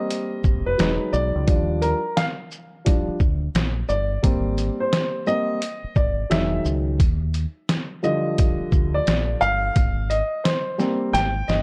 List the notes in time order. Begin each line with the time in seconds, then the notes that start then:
Already playing: G3 A#3 C4 D#5
0.11 closed hi-hat
0.44 G#1, kick, shaker
0.66 F1 B4
0.78 E1 F#3 G#3 D#4, snare, closed hi-hat
1.13 B1 D5, shaker
1.36 C#2
1.46 D#2 F3 G3 D4, kick, closed hi-hat
1.82 A#4, closed hi-hat, shaker
2.17 F5, snare, closed hi-hat
2.51 shaker
2.85 F3 G3 D4, kick, closed hi-hat
3.08 muted fingered electric bass stroke
3.20 D2, kick, shaker
3.55 A#1, snare, closed hi-hat
3.89 G1 D5, shaker
4.23 G#1 G3 A#3 C4, kick, closed hi-hat
4.58 closed hi-hat, shaker
4.80 C5
4.93 snare, closed hi-hat
5.26 G3 A#3 C4 D#5, shaker
5.62 closed hi-hat
5.84 muted fingered electric bass stroke
5.96 G#1 D5, kick, shaker
6.30 E1 D#3 F#3 G#3 E5, snare, closed hi-hat
6.65 C#2, shaker
7.00 D#2, kick, closed hi-hat
7.34 closed hi-hat, shaker
7.69 snare, closed hi-hat
8.03 D3 F3 G3 D#5, shaker
8.38 kick, closed hi-hat
8.60 muted fingered electric bass stroke
8.72 D2, kick, shaker
8.94 D5
9.07 A#1, snare, closed hi-hat
9.41 G1 F5, shaker
9.76 G#1, kick, closed hi-hat
10.10 D#5, closed hi-hat, shaker
10.44 C5, snare, closed hi-hat
10.78 G3 A#3 C4, snare, shaker
11.13 G#1 G5, snare, closed hi-hat
11.48 G1 D#5, snare, shaker